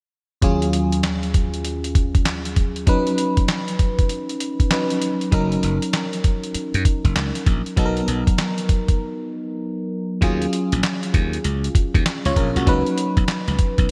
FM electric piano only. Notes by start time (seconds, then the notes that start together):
0.42 D#2 F#3 C#4 F4 G#4
2.87 F#3 C#4 D#4 B4
4.71 F#3 C#4 D#4 B4
5.32 F#3 C#4 D#4 A#4
7.76 F#3 B3 D#4 A4
7.85 A#4
10.21 F#3 C#4 F4 G#4
12.26 F4 C#5
12.37 C#4 A#4
12.57 A#3 F#4
12.66 F#3 C#4 D#4 B4